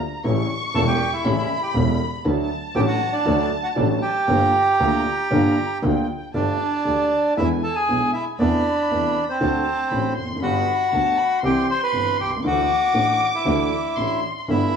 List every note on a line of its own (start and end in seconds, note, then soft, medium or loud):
0.00 0.20 A#5 loud
0.23 0.46 A1 medium
0.23 0.46 A2 medium
0.23 0.46 C#3 medium
0.23 0.46 G3 medium
0.23 0.46 A3 medium
0.23 0.46 E4 medium
0.23 1.24 C#6 loud
0.74 0.96 E1 medium
0.74 0.96 E2 medium
0.74 0.95 C#3 medium
0.74 0.96 G3 medium
0.74 0.96 A3 medium
0.74 0.96 E4 medium
0.74 0.81 A4 medium
0.74 0.80 A5 loud
0.87 1.11 G4 medium
0.87 1.13 G5 medium
1.13 1.36 E4 medium
1.13 1.36 E5 medium
1.24 1.46 A1 medium
1.24 1.46 A2 medium
1.24 1.46 C#3 medium
1.24 1.46 G3 medium
1.24 1.46 A3 medium
1.24 1.46 E4 medium
1.24 2.25 B5 loud
1.37 1.61 E4 medium
1.37 1.61 E5 medium
1.63 1.74 G4 medium
1.63 1.74 G5 medium
1.75 1.96 E1 loud
1.75 1.96 E1 medium
1.75 1.96 E2 medium
1.75 1.96 C#3 medium
1.75 1.96 G3 medium
1.75 1.96 A3 medium
1.75 1.96 E4 medium
2.24 2.47 D2 medium
2.24 2.47 D3 medium
2.24 2.46 F#3 medium
2.24 2.47 A3 medium
2.24 2.47 F#4 medium
2.24 4.27 A5 loud
2.75 2.97 A1 loud
2.75 2.97 A1 medium
2.75 2.97 A2 medium
2.75 2.97 D3 medium
2.75 2.97 F#3 medium
2.75 2.97 A3 medium
2.75 2.97 F#4 medium
2.75 2.81 G4 medium
2.75 2.81 G5 medium
2.87 3.11 F#4 medium
2.87 3.14 F#5 medium
3.13 3.37 D4 medium
3.13 3.37 D5 medium
3.25 3.47 D2 medium
3.25 3.47 D3 medium
3.25 3.47 F#3 medium
3.25 3.47 A3 medium
3.25 3.47 F#4 medium
3.38 3.50 D4 medium
3.38 3.50 D5 medium
3.63 3.70 F#4 medium
3.63 3.69 F#5 medium
3.75 3.98 A1 medium
3.75 3.98 A1 loud
3.75 3.98 A2 medium
3.75 3.98 D3 medium
3.75 3.98 F#3 medium
3.75 3.98 A3 medium
3.75 3.88 D4 medium
3.75 3.98 F#4 medium
3.75 3.87 D5 medium
4.02 5.78 G4 medium
4.02 5.78 G5 medium
4.27 4.49 G1 medium
4.27 4.50 G1 loud
4.27 4.49 G2 medium
4.27 4.49 D3 medium
4.27 4.49 G3 medium
4.27 4.49 A#3 medium
4.27 4.49 F4 medium
4.27 5.27 A#5 medium
4.79 5.01 D2 medium
4.79 5.01 D2 loud
4.79 5.01 D3 medium
4.79 5.01 G3 medium
4.79 5.01 A#3 medium
4.79 5.01 F4 medium
5.31 5.52 G1 medium
5.31 5.53 G1 medium
5.31 5.52 G2 medium
5.31 5.53 D3 medium
5.31 5.53 G3 medium
5.31 5.53 A#3 medium
5.31 5.53 F4 medium
5.31 5.79 A#5 medium
5.82 6.04 D2 medium
5.82 6.05 D2 medium
5.82 6.04 D3 medium
5.82 6.04 G3 medium
5.82 6.04 A#3 medium
5.82 6.05 F4 medium
5.82 6.31 G5 medium
6.34 6.56 G1 medium
6.34 6.56 G2 medium
6.34 6.56 D3 medium
6.34 6.56 G3 medium
6.34 6.56 A3 medium
6.34 7.34 D4 medium
6.34 6.56 G4 medium
6.34 7.33 D5 medium
6.34 7.33 A5 medium
6.85 7.07 D2 soft
6.85 7.08 D2 medium
6.85 7.07 D3 medium
6.85 7.07 G3 soft
6.85 7.07 A3 soft
6.85 7.07 G4 soft
7.36 7.59 E2 medium
7.36 7.59 D3 medium
7.36 7.59 E3 medium
7.36 7.59 G#3 medium
7.36 7.59 B3 medium
7.36 7.49 E4 medium
7.36 7.59 E4 medium
7.36 7.49 E5 medium
7.36 8.39 G#5 medium
7.63 7.75 A4 medium
7.63 7.76 A5 medium
7.75 8.11 G#4 medium
7.75 8.11 G#5 medium
7.88 8.10 B1 soft
7.88 8.10 B1 medium
7.88 8.10 B2 soft
7.88 8.10 D3 soft
7.88 8.10 G#3 soft
7.88 8.10 B3 soft
7.88 8.10 E4 soft
8.13 8.25 E4 medium
8.13 8.25 E5 medium
8.38 8.61 E2 medium
8.38 8.61 C3 medium
8.38 8.61 E3 medium
8.38 8.61 A3 medium
8.38 8.61 B3 medium
8.38 9.25 D4 medium
8.38 8.61 E4 medium
8.38 9.24 D5 medium
8.38 9.36 B5 medium
8.91 9.12 E2 medium
8.91 9.12 C3 soft
8.91 9.12 E3 medium
8.91 9.12 A3 soft
8.91 9.12 B3 soft
8.91 9.12 E4 medium
9.30 10.14 C4 medium
9.30 10.13 C5 medium
9.40 9.62 D2 medium
9.40 9.62 D3 medium
9.40 9.62 A3 medium
9.40 9.62 C4 medium
9.40 9.62 F#4 medium
9.40 9.91 A5 medium
9.91 10.13 A1 medium
9.91 10.13 A1 soft
9.91 10.13 A2 soft
9.91 10.13 D3 soft
9.91 10.13 A3 soft
9.91 10.13 C4 soft
9.91 10.13 F#4 soft
9.91 10.17 B5 medium
10.15 10.42 F1 medium
10.15 10.39 C6 medium
10.23 10.29 E2 soft
10.30 10.36 F2 soft
10.36 10.42 F#2 medium
10.40 10.63 G1 medium
10.40 10.63 G2 medium
10.40 10.63 D3 medium
10.40 10.63 G3 medium
10.40 10.63 B3 medium
10.40 11.39 F#4 medium
10.40 10.64 G4 medium
10.40 11.40 F#5 medium
10.40 10.92 B5 medium
10.92 11.14 D2 medium
10.92 11.14 D3 medium
10.92 11.14 G3 soft
10.92 11.14 B3 soft
10.92 11.14 G4 medium
10.92 11.18 A5 medium
11.17 11.43 B5 medium
11.42 11.64 C2 medium
11.42 11.65 C2 medium
11.42 11.64 C3 medium
11.42 11.64 E3 medium
11.42 11.64 G3 medium
11.42 11.65 C4 medium
11.42 11.65 G4 medium
11.42 11.68 G4 medium
11.42 11.68 G5 medium
11.42 12.44 C6 medium
11.70 11.81 C5 medium
11.70 11.82 C6 medium
11.83 12.17 B4 medium
11.83 12.18 B5 medium
11.93 12.15 G1 medium
11.93 12.15 G1 soft
11.93 12.15 G2 soft
11.93 12.15 E3 soft
11.93 12.15 G3 soft
11.93 12.15 C4 soft
11.93 12.15 G4 soft
12.19 12.43 C2 medium
12.19 12.31 G4 medium
12.19 12.32 G5 medium
12.25 12.31 B1 soft
12.32 12.38 C2 soft
12.37 12.44 C#2 medium
12.43 12.65 D2 medium
12.43 12.65 D3 medium
12.43 12.65 E3 medium
12.43 12.65 A3 medium
12.43 12.65 D4 medium
12.43 12.65 F#4 medium
12.43 13.30 F#4 medium
12.43 13.30 F#5 medium
12.43 13.97 D6 loud
12.94 13.16 A1 medium
12.94 13.16 A2 soft
12.94 13.16 E3 soft
12.94 13.16 A3 soft
12.94 13.16 D4 soft
12.94 13.16 F#4 medium
13.35 14.20 E4 medium
13.35 14.20 E5 medium
13.45 13.67 D2 medium
13.45 13.67 D3 medium
13.45 13.67 E3 medium
13.45 13.67 A3 medium
13.45 13.67 D4 medium
13.45 13.67 F#4 medium
13.96 14.19 A1 medium
13.96 14.19 A1 soft
13.96 14.19 A2 soft
13.96 14.19 E3 soft
13.96 14.19 A3 soft
13.96 14.19 D4 soft
13.96 14.19 F#4 soft
13.96 14.48 C6 medium
14.47 14.70 G1 medium
14.47 14.70 G2 medium
14.47 14.70 D3 medium
14.47 14.70 A3 medium
14.47 14.70 B3 medium
14.47 14.77 E4 medium
14.47 14.70 G4 medium
14.47 14.77 E5 medium
14.47 14.77 B5 medium